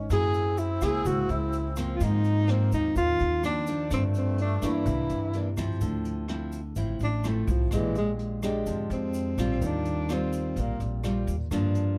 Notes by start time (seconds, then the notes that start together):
Already playing: C#4
0.10 F#2 F#3 A#3 C4 E4 G#4, kick, cross-stick, closed hi-hat, shaker
0.34 closed hi-hat, shaker
0.58 E4, closed hi-hat, shaker
0.81 C#2 A#3 E4 G#4, cross-stick, closed hi-hat, shaker
1.05 C#2 C#3 F#4, kick, closed hi-hat, shaker
1.29 C#2 E4, closed hi-hat, shaker
1.53 closed hi-hat, shaker
1.76 F3 A#3 C4, cross-stick, closed hi-hat, shaker
1.96 F4
2.00 G#2 A#3 D#4, kick, closed hi-hat, shaker
2.24 closed hi-hat, shaker
2.47 F3 A#3 C4, cross-stick, closed hi-hat
2.72 D#2 D#4, closed hi-hat, shaker
2.95 D#2 D#3 F4, kick, closed hi-hat, shaker
3.19 D#2, closed hi-hat, shaker
3.43 F3 A#3 C4 D4, cross-stick, closed hi-hat, shaker
3.67 F3 D4, closed hi-hat, shaker
3.91 G2 A3 C4, kick, cross-stick, closed hi-hat, shaker
4.14 C4, closed hi-hat, shaker
4.38 D4, closed hi-hat
4.62 G2 E3 A#3 D4 E4, cross-stick, closed hi-hat, shaker
4.86 C2 C3 G3, kick, closed hi-hat, shaker
5.09 G2, closed hi-hat, shaker
5.33 E3 A#3 D4, closed hi-hat
5.57 F3 C4 E4, kick, cross-stick, closed hi-hat, shaker
5.81 D2 D3, kick, closed hi-hat, shaker
6.05 closed hi-hat, shaker
6.28 F3 C4 E4, cross-stick, closed hi-hat
6.52 closed hi-hat, shaker
6.76 A1 A2 F3 C4 E4, kick, closed hi-hat, shaker
7.00 A1 D4, closed hi-hat, shaker
7.24 F3 A3 C4 E4, cross-stick, closed hi-hat, shaker
7.47 C2 F3, kick, closed hi-hat, shaker
7.71 A#1 A#2 G#3 D4 G4, kick, cross-stick, closed hi-hat, shaker
7.75 E3
7.95 G#3, closed hi-hat, shaker
8.19 closed hi-hat
8.42 G#3 D4 G4, cross-stick, closed hi-hat, shaker
8.66 F2 F3, kick, closed hi-hat, shaker
8.90 F2 C4, closed hi-hat, shaker
9.14 closed hi-hat, shaker
9.38 A#1 G3 C4 F4, kick, cross-stick, closed hi-hat, shaker
9.61 D#2 D#3, kick, closed hi-hat, shaker
9.66 D4
9.85 closed hi-hat, shaker
10.09 G3 C4 F4, cross-stick, closed hi-hat, shaker
10.13 C4
10.32 closed hi-hat, shaker
10.56 A#1 A#2, kick, closed hi-hat, shaker
10.60 A#3
10.80 A#1, closed hi-hat, shaker
11.04 G3 C4 F4, cross-stick, closed hi-hat, shaker
11.27 D#2, kick, closed hi-hat, shaker
11.51 G2 F3 A#3 D4, kick, cross-stick, closed hi-hat, shaker
11.75 closed hi-hat, shaker